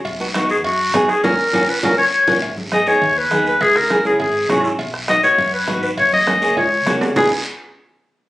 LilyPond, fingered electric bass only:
\new Staff \with { instrumentName = "Fingered electric bass" } { \clef bass \time 4/4 \key gis \minor \tempo 4 = 203 b,,2 fis,4 fis,8 r8 | fis,,8 r8 fis,,8 r8 fis,,8 r4 fis,,8 | gis,,2 dis,4 dis,4 | cis,2 gis,,4 gis,,4 |
b,,2 fis,4 gis,,4 | fis,,2 cis,4 cis,4 | gis,,8 r2. r8 | }